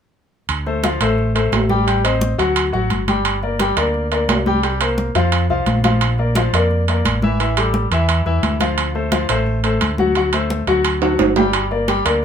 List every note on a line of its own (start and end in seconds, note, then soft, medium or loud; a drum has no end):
0.49 0.97 D2 medium
0.49 high conga soft
0.49 high timbale medium
0.66 0.81 A3 medium
0.66 0.81 A4 medium
0.66 0.81 C5 medium
0.66 high conga soft
0.84 0.98 F3 medium
0.84 0.98 F4 medium
0.84 0.98 F5 medium
0.84 high conga loud
0.84 high timbale medium
1.00 1.49 A1 medium
1.00 1.29 A3 medium
1.00 1.30 A4 medium
1.00 1.30 C5 medium
1.00 high conga soft
1.00 high timbale medium
1.18 high conga soft
1.35 1.63 A3 medium
1.35 1.64 A4 medium
1.35 1.64 C5 medium
1.35 high conga soft
1.35 high timbale medium
1.52 2.33 A1 medium
1.52 high conga medium
1.52 high timbale medium
1.52 low timbale medium
1.69 1.84 G3 medium
1.69 1.84 G4 medium
1.69 1.84 G5 medium
1.69 high conga medium
1.87 2.01 G3 medium
1.87 2.01 G4 medium
1.87 2.01 G5 medium
1.87 high conga soft
1.87 high timbale medium
2.04 2.33 C4 medium
2.04 2.33 C5 medium
2.04 2.33 D#5 medium
2.04 high conga soft
2.04 high timbale loud
2.21 high conga loud
2.38 2.71 D2 medium
2.38 2.67 F#3 medium
2.38 2.67 F#4 medium
2.38 2.67 F#5 medium
2.38 high conga soft
2.38 high timbale medium
2.56 high conga soft
2.56 high timbale medium
2.73 2.89 A1 medium
2.73 3.01 F#3 medium
2.73 3.01 F#4 medium
2.73 3.02 F#5 medium
2.73 high conga soft
2.90 3.71 G1 medium
2.90 high conga medium
2.90 high timbale medium
3.08 3.36 G3 medium
3.08 3.36 G4 medium
3.08 3.37 G5 medium
3.08 high conga medium
3.08 high timbale medium
3.25 high timbale medium
3.43 3.57 A#3 medium
3.43 3.57 A#4 medium
3.43 3.57 D5 medium
3.43 high conga soft
3.59 3.74 G3 medium
3.59 3.74 G4 medium
3.59 3.74 G5 medium
3.59 high conga medium
3.59 high timbale medium
3.77 4.25 D2 loud
3.77 4.05 A#3 medium
3.77 4.05 A#4 medium
3.77 4.06 D5 medium
3.77 high conga soft
3.77 high timbale medium
3.94 high conga soft
4.11 4.40 A#3 medium
4.11 4.40 A#4 medium
4.11 4.40 D5 medium
4.11 high conga soft
4.11 high timbale medium
4.28 5.09 C2 medium
4.28 high conga medium
4.28 high timbale medium
4.28 low timbale medium
4.46 4.61 G3 medium
4.46 4.61 G4 medium
4.46 4.61 G5 medium
4.46 high conga medium
4.63 4.77 G3 medium
4.63 4.78 G4 medium
4.63 4.78 G5 medium
4.63 high conga soft
4.63 high timbale medium
4.81 5.09 A#3 medium
4.81 5.09 A#4 medium
4.81 5.09 C5 medium
4.81 high conga soft
4.81 high timbale medium
4.98 high conga medium
5.15 5.47 F2 medium
5.15 5.43 F3 medium
5.15 5.44 F4 medium
5.15 5.44 F5 medium
5.15 high conga soft
5.15 high timbale medium
5.32 high conga soft
5.32 high timbale medium
5.49 5.65 C2 medium
5.49 5.78 F3 medium
5.49 5.78 F4 medium
5.49 5.78 F5 medium
5.49 high conga soft
5.66 6.47 A#1 medium
5.66 high conga medium
5.66 high timbale medium
5.84 6.12 F3 medium
5.84 6.13 F4 medium
5.84 6.13 F5 medium
5.84 high conga medium
5.84 high timbale medium
6.01 high conga soft
6.01 high timbale medium
6.18 6.33 A#3 medium
6.18 6.33 A#4 medium
6.18 6.33 D5 medium
6.18 high conga soft
6.35 6.51 F3 medium
6.35 6.51 F4 medium
6.35 6.51 F5 medium
6.35 high conga loud
6.35 high timbale medium
6.53 7.01 F2 medium
6.53 6.82 A#3 medium
6.53 6.82 A#4 medium
6.53 6.82 D5 medium
6.53 high conga soft
6.53 high timbale medium
6.71 high conga soft
6.88 7.17 A#3 medium
6.88 7.17 A#4 medium
6.88 7.17 D5 medium
6.88 high conga soft
6.88 high timbale medium
7.05 7.85 A1 medium
7.05 high conga medium
7.05 high timbale medium
7.22 7.37 E3 medium
7.22 7.37 E4 medium
7.22 7.37 E5 medium
7.22 high conga medium
7.40 7.54 E3 medium
7.40 7.54 E4 medium
7.40 7.54 E5 medium
7.40 high conga soft
7.40 high timbale medium
7.57 7.85 G3 medium
7.57 7.86 G4 medium
7.57 7.86 A4 medium
7.57 high conga soft
7.57 high timbale medium
7.74 high conga medium
7.91 8.23 E2 medium
7.91 8.20 E3 medium
7.91 8.20 E4 medium
7.91 8.20 E5 medium
7.91 high conga soft
7.91 high timbale medium
8.09 high conga soft
8.09 high timbale medium
8.25 8.42 E2 medium
8.25 8.54 E3 medium
8.25 8.54 E4 medium
8.25 8.55 E5 medium
8.25 high conga soft
8.43 9.24 D2 medium
8.43 high conga medium
8.43 high timbale medium
8.60 8.89 F3 medium
8.60 8.89 F4 medium
8.60 8.89 F5 medium
8.60 high conga medium
8.60 high timbale medium
8.78 high conga soft
8.78 high timbale medium
8.95 9.09 A3 medium
8.95 9.09 A4 medium
8.95 9.09 C5 medium
8.95 high conga soft
9.12 9.26 F3 medium
9.12 9.26 F4 medium
9.12 9.27 F5 medium
9.12 high conga medium
9.12 high timbale medium
9.29 9.77 A1 loud
9.29 9.58 A3 medium
9.29 9.58 A4 medium
9.29 9.58 C5 medium
9.29 high conga soft
9.29 high timbale medium
9.46 high conga soft
9.64 9.92 A3 medium
9.64 9.92 A4 medium
9.64 9.92 C5 medium
9.64 high conga soft
9.64 high timbale medium
9.81 10.62 D2 medium
9.81 high conga medium
9.81 high timbale medium
9.98 10.13 F#3 medium
9.98 10.13 F#4 medium
9.98 10.13 F#5 medium
9.98 high conga medium
10.15 10.30 F#3 medium
10.15 10.30 F#4 medium
10.15 10.30 F#5 medium
10.15 high conga soft
10.15 high timbale medium
10.33 10.62 A3 medium
10.33 10.62 A4 medium
10.33 10.62 C5 medium
10.33 high conga soft
10.33 high timbale medium
10.50 high conga medium
10.67 11.15 D2 medium
10.67 10.96 F#3 medium
10.67 10.96 F#4 medium
10.67 10.96 F#5 medium
10.67 high conga soft
10.67 high timbale medium
10.85 high conga soft
10.85 high timbale medium
11.02 11.30 F#3 medium
11.02 11.31 F#4 medium
11.02 11.31 F#5 medium
11.02 high conga soft
11.02 high timbale medium
11.19 12.00 G1 medium
11.19 high conga medium
11.19 high timbale medium
11.36 11.65 G3 medium
11.36 11.65 G4 medium
11.36 11.65 G5 medium
11.36 high conga medium
11.36 low timbale medium
11.53 high timbale medium
11.71 11.85 A#3 medium
11.71 11.85 A#4 medium
11.71 11.86 D5 medium
11.71 high conga soft
11.88 12.02 G3 medium
11.88 12.02 G4 medium
11.88 12.03 G5 medium
11.88 high conga medium
11.88 high timbale medium
12.05 12.25 D2 medium
12.05 12.25 A#3 medium
12.05 12.25 A#4 medium
12.05 12.25 D5 medium
12.05 high conga soft
12.05 high timbale medium